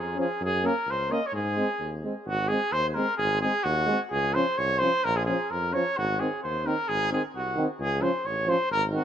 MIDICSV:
0, 0, Header, 1, 5, 480
1, 0, Start_track
1, 0, Tempo, 461184
1, 428, Time_signature, 2, 2, 24, 8
1, 9410, End_track
2, 0, Start_track
2, 0, Title_t, "Trumpet"
2, 0, Program_c, 0, 56
2, 0, Note_on_c, 0, 68, 75
2, 204, Note_off_c, 0, 68, 0
2, 211, Note_on_c, 0, 68, 76
2, 424, Note_off_c, 0, 68, 0
2, 462, Note_on_c, 0, 68, 94
2, 686, Note_on_c, 0, 70, 85
2, 701, Note_off_c, 0, 68, 0
2, 944, Note_on_c, 0, 72, 91
2, 959, Note_off_c, 0, 70, 0
2, 1159, Note_on_c, 0, 75, 78
2, 1174, Note_off_c, 0, 72, 0
2, 1313, Note_on_c, 0, 73, 76
2, 1328, Note_off_c, 0, 75, 0
2, 1394, Note_off_c, 0, 73, 0
2, 1400, Note_on_c, 0, 68, 83
2, 2079, Note_off_c, 0, 68, 0
2, 2366, Note_on_c, 0, 66, 91
2, 2582, Note_on_c, 0, 68, 96
2, 2598, Note_off_c, 0, 66, 0
2, 2835, Note_on_c, 0, 72, 106
2, 2851, Note_off_c, 0, 68, 0
2, 3009, Note_off_c, 0, 72, 0
2, 3009, Note_on_c, 0, 72, 61
2, 3063, Note_on_c, 0, 70, 87
2, 3079, Note_off_c, 0, 72, 0
2, 3297, Note_off_c, 0, 70, 0
2, 3303, Note_on_c, 0, 68, 102
2, 3535, Note_off_c, 0, 68, 0
2, 3547, Note_on_c, 0, 68, 95
2, 3784, Note_on_c, 0, 66, 104
2, 3799, Note_off_c, 0, 68, 0
2, 4167, Note_off_c, 0, 66, 0
2, 4271, Note_on_c, 0, 68, 103
2, 4516, Note_on_c, 0, 72, 92
2, 4532, Note_off_c, 0, 68, 0
2, 4763, Note_on_c, 0, 73, 109
2, 4779, Note_off_c, 0, 72, 0
2, 4981, Note_on_c, 0, 72, 102
2, 4997, Note_off_c, 0, 73, 0
2, 5248, Note_on_c, 0, 70, 106
2, 5264, Note_off_c, 0, 72, 0
2, 5374, Note_on_c, 0, 68, 92
2, 5390, Note_off_c, 0, 70, 0
2, 5461, Note_off_c, 0, 68, 0
2, 5468, Note_on_c, 0, 68, 84
2, 5733, Note_on_c, 0, 70, 87
2, 5748, Note_off_c, 0, 68, 0
2, 5964, Note_on_c, 0, 73, 96
2, 5980, Note_off_c, 0, 70, 0
2, 6215, Note_on_c, 0, 66, 103
2, 6231, Note_off_c, 0, 73, 0
2, 6449, Note_on_c, 0, 68, 81
2, 6465, Note_off_c, 0, 66, 0
2, 6682, Note_off_c, 0, 68, 0
2, 6688, Note_on_c, 0, 72, 79
2, 6936, Note_on_c, 0, 70, 89
2, 6952, Note_off_c, 0, 72, 0
2, 7164, Note_on_c, 0, 68, 106
2, 7180, Note_off_c, 0, 70, 0
2, 7400, Note_off_c, 0, 68, 0
2, 7417, Note_on_c, 0, 68, 78
2, 7520, Note_off_c, 0, 68, 0
2, 7660, Note_on_c, 0, 66, 81
2, 7995, Note_off_c, 0, 66, 0
2, 8130, Note_on_c, 0, 68, 99
2, 8349, Note_on_c, 0, 72, 80
2, 8365, Note_off_c, 0, 68, 0
2, 8591, Note_on_c, 0, 73, 87
2, 8607, Note_off_c, 0, 72, 0
2, 8839, Note_on_c, 0, 72, 86
2, 8855, Note_off_c, 0, 73, 0
2, 9063, Note_off_c, 0, 72, 0
2, 9070, Note_on_c, 0, 70, 107
2, 9192, Note_off_c, 0, 70, 0
2, 9312, Note_on_c, 0, 66, 78
2, 9410, Note_off_c, 0, 66, 0
2, 9410, End_track
3, 0, Start_track
3, 0, Title_t, "French horn"
3, 0, Program_c, 1, 60
3, 161, Note_on_c, 1, 61, 65
3, 262, Note_off_c, 1, 61, 0
3, 658, Note_on_c, 1, 61, 67
3, 757, Note_off_c, 1, 61, 0
3, 1138, Note_on_c, 1, 61, 52
3, 1238, Note_off_c, 1, 61, 0
3, 1637, Note_on_c, 1, 60, 62
3, 1733, Note_off_c, 1, 60, 0
3, 2124, Note_on_c, 1, 60, 42
3, 2219, Note_off_c, 1, 60, 0
3, 2604, Note_on_c, 1, 60, 56
3, 2699, Note_off_c, 1, 60, 0
3, 3081, Note_on_c, 1, 60, 64
3, 3177, Note_off_c, 1, 60, 0
3, 3556, Note_on_c, 1, 60, 59
3, 3653, Note_off_c, 1, 60, 0
3, 4053, Note_on_c, 1, 60, 51
3, 4147, Note_off_c, 1, 60, 0
3, 4535, Note_on_c, 1, 61, 71
3, 4629, Note_off_c, 1, 61, 0
3, 5011, Note_on_c, 1, 61, 63
3, 5105, Note_off_c, 1, 61, 0
3, 5492, Note_on_c, 1, 61, 59
3, 5586, Note_off_c, 1, 61, 0
3, 5960, Note_on_c, 1, 61, 47
3, 6056, Note_off_c, 1, 61, 0
3, 6445, Note_on_c, 1, 60, 64
3, 6540, Note_off_c, 1, 60, 0
3, 6920, Note_on_c, 1, 60, 54
3, 7015, Note_off_c, 1, 60, 0
3, 7408, Note_on_c, 1, 60, 66
3, 7501, Note_off_c, 1, 60, 0
3, 7896, Note_on_c, 1, 60, 57
3, 7987, Note_off_c, 1, 60, 0
3, 8343, Note_on_c, 1, 61, 74
3, 8440, Note_off_c, 1, 61, 0
3, 8824, Note_on_c, 1, 61, 58
3, 8920, Note_off_c, 1, 61, 0
3, 9314, Note_on_c, 1, 60, 59
3, 9407, Note_off_c, 1, 60, 0
3, 9410, End_track
4, 0, Start_track
4, 0, Title_t, "Euphonium"
4, 0, Program_c, 2, 58
4, 175, Note_on_c, 2, 53, 65
4, 274, Note_off_c, 2, 53, 0
4, 664, Note_on_c, 2, 58, 65
4, 762, Note_off_c, 2, 58, 0
4, 1151, Note_on_c, 2, 58, 67
4, 1248, Note_off_c, 2, 58, 0
4, 1628, Note_on_c, 2, 56, 65
4, 1726, Note_off_c, 2, 56, 0
4, 2127, Note_on_c, 2, 56, 52
4, 2222, Note_off_c, 2, 56, 0
4, 2598, Note_on_c, 2, 56, 53
4, 2694, Note_off_c, 2, 56, 0
4, 3086, Note_on_c, 2, 56, 58
4, 3181, Note_off_c, 2, 56, 0
4, 3563, Note_on_c, 2, 56, 57
4, 3659, Note_off_c, 2, 56, 0
4, 4022, Note_on_c, 2, 56, 77
4, 4122, Note_off_c, 2, 56, 0
4, 4525, Note_on_c, 2, 53, 62
4, 4620, Note_off_c, 2, 53, 0
4, 5009, Note_on_c, 2, 53, 64
4, 5104, Note_off_c, 2, 53, 0
4, 5491, Note_on_c, 2, 53, 58
4, 5585, Note_off_c, 2, 53, 0
4, 5975, Note_on_c, 2, 53, 63
4, 6068, Note_off_c, 2, 53, 0
4, 6443, Note_on_c, 2, 51, 53
4, 6538, Note_off_c, 2, 51, 0
4, 6931, Note_on_c, 2, 51, 65
4, 7024, Note_off_c, 2, 51, 0
4, 7409, Note_on_c, 2, 51, 57
4, 7502, Note_off_c, 2, 51, 0
4, 7865, Note_on_c, 2, 51, 74
4, 7962, Note_off_c, 2, 51, 0
4, 8334, Note_on_c, 2, 53, 66
4, 8433, Note_off_c, 2, 53, 0
4, 8805, Note_on_c, 2, 53, 73
4, 8905, Note_off_c, 2, 53, 0
4, 9273, Note_on_c, 2, 51, 58
4, 9375, Note_off_c, 2, 51, 0
4, 9410, End_track
5, 0, Start_track
5, 0, Title_t, "Tuba"
5, 0, Program_c, 3, 58
5, 0, Note_on_c, 3, 41, 68
5, 205, Note_off_c, 3, 41, 0
5, 425, Note_on_c, 3, 42, 103
5, 691, Note_off_c, 3, 42, 0
5, 897, Note_on_c, 3, 37, 75
5, 1167, Note_off_c, 3, 37, 0
5, 1385, Note_on_c, 3, 44, 91
5, 1653, Note_off_c, 3, 44, 0
5, 1863, Note_on_c, 3, 39, 68
5, 2132, Note_off_c, 3, 39, 0
5, 2352, Note_on_c, 3, 32, 86
5, 2618, Note_off_c, 3, 32, 0
5, 2831, Note_on_c, 3, 39, 70
5, 3098, Note_off_c, 3, 39, 0
5, 3312, Note_on_c, 3, 32, 91
5, 3579, Note_off_c, 3, 32, 0
5, 3794, Note_on_c, 3, 39, 89
5, 4060, Note_off_c, 3, 39, 0
5, 4283, Note_on_c, 3, 37, 86
5, 4547, Note_off_c, 3, 37, 0
5, 4766, Note_on_c, 3, 36, 86
5, 5029, Note_off_c, 3, 36, 0
5, 5253, Note_on_c, 3, 34, 99
5, 5514, Note_off_c, 3, 34, 0
5, 5730, Note_on_c, 3, 41, 70
5, 5991, Note_off_c, 3, 41, 0
5, 6221, Note_on_c, 3, 32, 99
5, 6479, Note_off_c, 3, 32, 0
5, 6702, Note_on_c, 3, 39, 77
5, 6959, Note_off_c, 3, 39, 0
5, 7172, Note_on_c, 3, 32, 97
5, 7431, Note_off_c, 3, 32, 0
5, 7647, Note_on_c, 3, 36, 69
5, 7907, Note_off_c, 3, 36, 0
5, 8115, Note_on_c, 3, 37, 101
5, 8377, Note_off_c, 3, 37, 0
5, 8585, Note_on_c, 3, 33, 77
5, 8849, Note_off_c, 3, 33, 0
5, 9063, Note_on_c, 3, 32, 94
5, 9326, Note_off_c, 3, 32, 0
5, 9410, End_track
0, 0, End_of_file